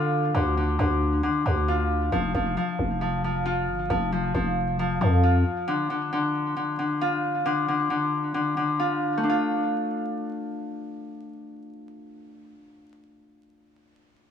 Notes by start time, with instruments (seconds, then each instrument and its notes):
Already playing: 808-style bass D3, harp D3 F4
0.35 808-style bass D2, harp D3
0.57 harp D3
0.79 808-style bass D2, harp D3
1.23 harp D3
1.46 808-style bass D2, harp D3
1.68 harp F4
2.12 808-style bass F1, harp F3
2.34 808-style bass F1, harp F3
2.57 harp F3
2.79 808-style bass F1
3.01 harp F3
3.24 harp F3
3.46 harp F4
3.68 808-style bass G1
3.90 808-style bass F1, harp F3
4.12 harp F3
4.34 808-style bass F1, harp F3
4.79 harp F3
5.01 808-style bass F2, harp F3
5.23 harp F4
5.68 harp D3
5.90 harp D3
6.13 harp D3
6.56 harp D3
6.79 harp D3
7.01 harp F4
7.46 harp D3
7.68 harp D3
7.90 harp D3
8.34 harp D3
8.57 harp D3
8.80 harp F4
9.18 harp A3
9.24 harp D4
9.30 harp F4